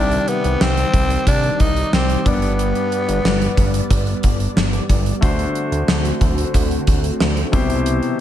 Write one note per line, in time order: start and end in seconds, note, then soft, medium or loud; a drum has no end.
0.00 0.19 C2 loud
0.00 0.90 C3 medium
0.00 2.21 D#3 medium
0.00 2.23 D#3 medium
0.00 2.21 G3 medium
0.00 5.18 G3 medium
0.00 0.30 D4 medium
0.00 2.22 G4 medium
0.00 2.22 D5 medium
0.00 5.18 D5 medium
0.12 closed hi-hat soft
0.28 0.63 B3 medium
0.28 closed hi-hat medium
0.44 0.56 C2 medium
0.44 closed hi-hat medium
0.61 0.85 C2 loud
0.61 1.27 C4 loud
0.61 snare loud
0.77 closed hi-hat soft
0.94 1.17 C2 loud
0.94 kick medium
0.94 closed hi-hat medium
1.10 closed hi-hat medium
1.27 1.51 C2 loud
1.27 1.62 D4 medium
1.27 kick medium
1.27 closed hi-hat medium
1.43 closed hi-hat soft
1.60 1.84 C2 medium
1.60 1.93 D#4 medium
1.60 kick medium
1.60 closed hi-hat medium
1.77 closed hi-hat soft
1.93 2.17 C2 loud
1.93 2.29 C4 medium
1.93 snare loud
2.10 closed hi-hat soft
2.25 2.73 G1 loud
2.25 3.21 G2 medium
2.25 4.85 B3 medium
2.25 5.19 B3 medium
2.25 4.24 B3 medium
2.25 4.85 D4 medium
2.25 4.86 G4 medium
2.25 4.86 D5 medium
2.25 kick medium
2.25 closed hi-hat medium
2.42 closed hi-hat soft
2.59 closed hi-hat medium
2.75 closed hi-hat soft
2.92 closed hi-hat medium
3.08 3.20 G1 medium
3.08 closed hi-hat soft
3.24 3.48 G1 loud
3.24 snare loud
3.42 closed hi-hat soft
3.57 3.81 G1 medium
3.57 kick medium
3.57 closed hi-hat medium
3.74 closed hi-hat medium
3.91 4.14 G1 loud
3.91 kick medium
3.91 closed hi-hat medium
4.07 closed hi-hat soft
4.23 4.47 G1 medium
4.23 kick medium
4.23 closed hi-hat medium
4.40 closed hi-hat soft
4.56 4.80 G1 loud
4.56 snare loud
4.73 closed hi-hat soft
4.89 5.13 G1 loud
4.89 kick medium
4.89 closed hi-hat medium
5.06 closed hi-hat soft
5.21 5.46 D2 loud
5.21 7.51 D3 medium
5.21 6.17 D3 medium
5.21 7.48 A3 medium
5.21 7.51 A3 medium
5.21 7.51 C4 medium
5.21 7.49 D4 medium
5.21 7.51 F#4 medium
5.21 7.49 F#4 medium
5.21 7.50 C5 medium
5.21 kick loud
5.21 closed hi-hat medium
5.39 closed hi-hat soft
5.55 closed hi-hat medium
5.72 5.84 D2 loud
5.72 closed hi-hat medium
5.88 6.12 D2 loud
5.88 snare loud
6.05 closed hi-hat soft
6.21 6.45 D2 loud
6.21 kick medium
6.21 closed hi-hat medium
6.38 closed hi-hat medium
6.54 6.78 D2 loud
6.54 kick medium
6.54 closed hi-hat medium
6.71 closed hi-hat soft
6.87 7.11 D2 loud
6.87 kick medium
6.87 closed hi-hat medium
7.04 closed hi-hat soft
7.20 7.44 D2 loud
7.20 snare loud
7.37 closed hi-hat soft
7.52 8.01 C2 medium
7.52 8.20 B2 medium
7.52 8.20 C3 medium
7.52 8.20 E3 medium
7.52 8.20 G3 medium
7.52 8.20 E4 medium
7.52 8.20 G4 medium
7.52 8.20 C5 medium
7.52 kick loud
7.52 closed hi-hat medium
7.70 closed hi-hat soft
7.86 closed hi-hat medium
8.03 closed hi-hat soft